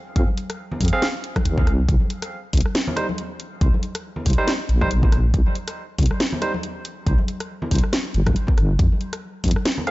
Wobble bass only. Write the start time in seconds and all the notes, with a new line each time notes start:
0.16 F2
0.81 F2
1.45 D#2
1.67 C2
1.89 C2
2.53 C2
3.61 C2
4.26 C2
4.69 A#1
5.34 C2
5.99 C2
7.07 C2
7.71 C2
8.15 G1
8.27 G1
8.58 G1
8.79 F2
9.44 F2